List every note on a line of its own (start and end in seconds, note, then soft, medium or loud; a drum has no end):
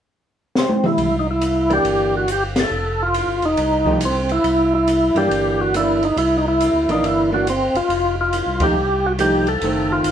0.55 0.86 C4 medium
0.55 snare medium
0.69 high tom medium
0.84 1.16 E4 medium
0.84 mid tom medium
0.98 1.80 C2 medium
0.98 ride medium
1.19 1.27 D#4 medium
1.31 1.73 E4 medium
1.41 hi-hat pedal soft
1.41 ride medium
1.70 2.25 E3 soft
1.70 2.25 A#3 medium
1.70 2.25 D4 medium
1.70 2.16 G4 medium
1.70 ride soft
1.84 2.66 G1 medium
1.84 ride medium
2.17 2.30 F#4 medium
2.28 hi-hat pedal medium
2.28 ride medium
2.32 2.44 G4 medium
2.56 3.02 A4 medium
2.56 snare medium
2.56 ride medium
2.71 3.24 F1 medium
3.03 3.45 F4 medium
3.14 hi-hat pedal soft
3.14 ride medium
3.27 3.41 G1 soft
3.42 3.56 E1 medium
3.42 3.98 D#4 medium
3.42 ride soft
3.57 4.40 C2 medium
3.57 ride medium
3.85 3.99 F3 medium
3.85 3.99 A3 medium
3.85 4.00 D#4 medium
3.85 4.00 G4 medium
3.85 kick medium
4.01 hi-hat pedal medium
4.01 ride medium
4.05 4.32 C4 medium
4.29 4.74 E4 medium
4.29 ride soft
4.44 5.11 C2 medium
4.44 ride medium
4.75 5.18 E4 medium
4.87 hi-hat pedal medium
4.87 ride medium
5.15 5.29 G2 medium
5.15 5.70 E3 medium
5.15 5.71 A#3 medium
5.15 5.71 D4 medium
5.15 5.61 G4 medium
5.15 ride soft
5.30 6.12 G1 medium
5.30 ride medium
5.61 5.75 F#4 medium
5.74 5.99 E3 soft
5.74 5.99 A#3 medium
5.74 6.00 D4 medium
5.74 6.04 E4 medium
5.74 hi-hat pedal medium
5.74 ride medium
6.03 6.17 D#4 medium
6.03 ride soft
6.16 6.70 C2 medium
6.16 6.37 E4 medium
6.16 ride medium
6.38 6.46 D#4 medium
6.48 6.91 E4 medium
6.60 hi-hat pedal soft
6.60 ride medium
6.73 6.87 D2 soft
6.88 7.01 A#1 medium
6.88 7.29 E3 medium
6.88 7.29 A#3 medium
6.88 7.29 D4 medium
6.88 7.05 D#4 medium
6.88 ride soft
7.03 7.70 G1 medium
7.03 7.31 E4 medium
7.03 ride medium
7.32 7.45 E3 medium
7.32 7.45 A#3 medium
7.32 7.45 D4 medium
7.32 7.48 F#4 medium
7.47 7.77 C4 medium
7.47 hi-hat pedal soft
7.47 ride medium
7.74 7.82 G1 soft
7.74 8.15 F4 medium
7.74 ride soft
7.89 8.42 F1 medium
7.89 ride medium
8.21 8.63 F4 medium
8.33 hi-hat pedal medium
8.33 ride medium
8.46 8.60 C2 medium
8.60 8.74 D#2 medium
8.60 8.74 F3 medium
8.60 8.74 A3 medium
8.60 8.74 D#4 medium
8.60 8.75 G4 medium
8.60 9.06 G4 loud
8.60 kick medium
8.60 ride medium
8.75 9.57 C2 medium
9.06 9.13 F#4 medium
9.19 9.44 F3 medium
9.19 9.44 A3 medium
9.19 9.45 D#4 medium
9.19 9.49 G4 medium
9.19 9.45 G4 medium
9.19 hi-hat pedal medium
9.19 ride medium
9.47 9.92 A4 medium
9.47 ride soft
9.61 10.02 F#1 medium
9.61 10.12 D#3 soft
9.61 10.12 A3 medium
9.61 10.12 C4 medium
9.61 ride medium
9.92 10.12 F4 medium
10.04 10.12 G1 medium
10.04 hi-hat pedal medium
10.04 ride medium